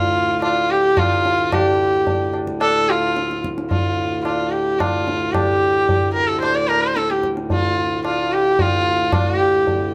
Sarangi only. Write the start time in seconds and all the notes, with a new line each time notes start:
Already playing: F4
0.43 F4
0.71 G4
0.98 F4
1.53 G4
2.62 A4
2.89 F4
3.70 F4
4.24 F4
4.51 G4
4.79 F4
5.32 G4
6.13 A#4
6.27 A4
6.41 C5
6.55 D5
6.68 A#4
6.82 C5
6.96 A4
7.11 G4
7.52 F4
8.05 F4
8.33 G4
8.60 F4
9.13 F4
9.37 G4